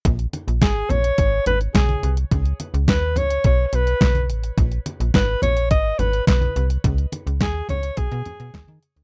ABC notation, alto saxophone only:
X:1
M:4/4
L:1/16
Q:1/4=106
K:G#m
V:1 name="Alto saxophone"
z4 G2 c4 B2 G3 z | z4 B2 c2 c3/2 c/2 B4 z2 | z4 B2 c2 d2 B2 B3 z | z4 G2 c2 G6 z2 |]